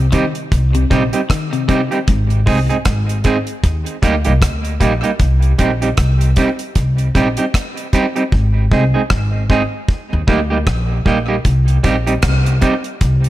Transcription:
0.12 D#3 G3 C4 D#4 G4, kick, closed hi-hat
0.35 closed hi-hat
0.52 C2, kick, closed hi-hat
0.75 C3, closed hi-hat
0.90 A#1 C3 G3 C4 D#4 G4, kick, closed hi-hat
1.13 G3 C4 D#4 G4, closed hi-hat
1.30 D#3, kick, cross-stick, closed hi-hat
1.53 C3, closed hi-hat
1.68 C3 G3 C4 D#4 G4, kick, closed hi-hat
1.91 G3 C4 D#4 G4, closed hi-hat
2.08 G#1 G#2, kick, closed hi-hat
2.30 closed hi-hat
2.46 C2 G#3 C4 D#4 G#4, kick, open hi-hat
2.69 G#3 C4 D#4 G#4, closed hi-hat
2.85 G#1, kick, cross-stick, closed hi-hat
3.09 closed hi-hat
3.24 G#3 C4 D#4 G#4, kick, closed hi-hat
3.47 closed hi-hat
3.64 D#2, kick, closed hi-hat
3.86 closed hi-hat
4.02 D2 G3 A#3 D#4 G4, kick, closed hi-hat
4.25 C2 G3 A#3 D#4 G4, closed hi-hat
4.42 kick, cross-stick, closed hi-hat
4.65 closed hi-hat
4.80 A#1 G3 A#3 D#4 G4, kick, closed hi-hat
5.03 G3 A#3 D#4 G4, closed hi-hat
5.19 C2, kick, closed hi-hat
5.42 closed hi-hat
5.58 A#1 G3 C4 D#4 G4, kick, closed hi-hat
5.82 G3 C4 D#4 G4, closed hi-hat
5.97 C2, kick, cross-stick, closed hi-hat
6.21 closed hi-hat
6.36 G3 C4 D#4 G4, kick, closed hi-hat
6.59 closed hi-hat
6.75 C2, kick, closed hi-hat
6.98 closed hi-hat
7.15 A#1 G3 C4 D#4 G4, kick, closed hi-hat
7.37 G3 C4 D#4 G4, closed hi-hat
7.54 kick, cross-stick, closed hi-hat
7.77 closed hi-hat
7.93 G3 C4 D#4 G4, kick, closed hi-hat
8.16 G3 C4 D#4 G4, closed hi-hat
8.32 G#1, kick
8.72 C2 G#3 C4 D#4 G#4, kick
8.94 G#3 C4 D#4 G#4
9.10 G#1, kick, cross-stick
9.50 G#3 C4 D#4 G#4, kick
9.88 kick
10.13 D#2
10.27 D2 G3 A#3 D#4 G4, kick
10.50 G3 A#3 D#4 G4
10.67 A#1, kick, cross-stick
11.06 A#1 G3 A#3 D#4 G4, kick
11.28 G3 A#3 D#4 G4
11.45 C2, kick, closed hi-hat
11.68 closed hi-hat
11.83 A#1 G3 C4 D#4 G4, kick, closed hi-hat
12.07 G3 C4 D#4 G4, closed hi-hat
12.22 C2, kick, cross-stick, closed hi-hat
12.46 closed hi-hat
12.61 G3 C4 D#4 G4, kick, closed hi-hat
12.84 closed hi-hat
13.01 C2, kick, closed hi-hat
13.24 closed hi-hat

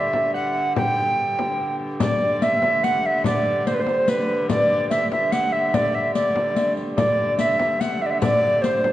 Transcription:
Already playing: G2 D3 D5 E5 G5
0.13 E5, frame drum
0.34 F#5
0.56 frame drum
0.76 G5, frame drum
1.18 frame drum
1.39 frame drum
1.60 frame drum
1.80 frame drum
2.00 G2 D3 D5, riq, frame drum
2.22 frame drum
2.42 E5, riq, frame drum
2.62 E5, riq, frame drum
2.84 F#5, riq
3.05 E5, frame drum
3.24 D5, riq, frame drum
3.45 frame drum
3.65 C5, riq, frame drum
3.74 B4
3.79 C5
3.87 riq, frame drum
4.07 B4, riq
4.29 frame drum
4.49 D5, riq, frame drum
4.70 frame drum
4.90 E5, riq, frame drum
5.12 E5, riq, frame drum
5.32 F#5, riq
5.52 E5, frame drum
5.69 E5
5.74 D5, riq, frame drum
5.94 E5
6.15 D5, riq
6.36 frame drum
6.56 E5, riq
6.77 riq, frame drum
6.97 G2 D3 D5, riq, frame drum
7.19 frame drum
7.38 E5, riq, frame drum
7.59 E5, riq, frame drum
7.80 F#5, riq
8.01 E5
8.06 D5
8.11 E5
8.21 D5, riq, frame drum
8.43 D5, frame drum
8.62 C5, riq, frame drum
8.84 C5, riq, frame drum

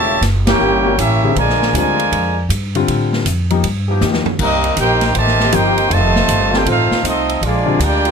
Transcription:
Already playing: E1 A#2 C#3 E3 A3 C#4 G4 C#5 E5 A5
0.21 F#1, snare, hi-hat pedal, ride
0.46 E3 A#3 C#4 E4 G4 A#4 C#5 G5, snare, ride
0.59 G1
0.85 G3 A#3 C#4 F#4
0.98 A1 A#3 C#4 E4 G4 A#4 E5, hi-hat pedal, ride
1.24 D3 G3 C4 G#4
1.35 A#1 D3 F3 G#3 A#3 D4 F4 G#4 A#4 D5 G#5, ride
1.50 snare
1.62 snare
1.73 D2 D3 F3 G3 G#3 C4 F4 A#4 D5 G#5, hi-hat pedal, ride
1.99 ride
2.12 F2, ride
2.49 G2, hi-hat pedal, ride
2.75 D3 G3 C4 F4, ride
2.88 A2, ride
3.13 snare
3.25 F2, hi-hat pedal, ride
3.50 F3 A#3 D#4 G4, ride
3.63 G2, ride
3.87 F3 B3 D#4 G4
4.01 D#2 F3 A#3 D#4 G4, snare, hi-hat pedal
4.14 snare
4.25 muted upright bass stroke, floor tom
4.39 C2 G3 A#3 C4 D#4 G4 A#4 D#5, kick, crash
4.64 ride
4.77 A#1 A#3 D#4 G4 A#4 C5 G5, hi-hat pedal, ride
5.01 snare, ride
5.15 A1 D#3 A3 A#3 G4 C5 D#5 A5, ride
5.27 snare
5.40 D#3 A#3 C4 G4, snare
5.52 G1 F3 A#3 D#4 G4 A#4 C5 G5, hi-hat pedal, ride
5.78 ride
5.90 F1 C3 D#3 A3 C4 F4 C5 D#5 A5, ride
6.16 snare
6.28 G1, hi-hat pedal, ride
6.53 D#3 G3 A3 C4 F4 G4 A4 C5 G5, snare
6.57 D#4
6.65 A1 A3 C4 F4, ride
6.70 D#4 A4 C5 F5
6.91 muted upright bass stroke, snare
7.03 C2 A3 C4 D#4, hi-hat pedal, ride
7.07 C4 F4 A4 D#5
7.29 ride
7.41 A#1 D3 F3 G#3 A#3 D4 F4 D5, ride
7.46 A#3 G#4
7.66 D3 G3 C4 F4
7.79 D2 G#3 D4 G4, hi-hat pedal, ride
7.83 F4 A#4 D5 G5
8.05 D#3 G3 B3 F4, ride

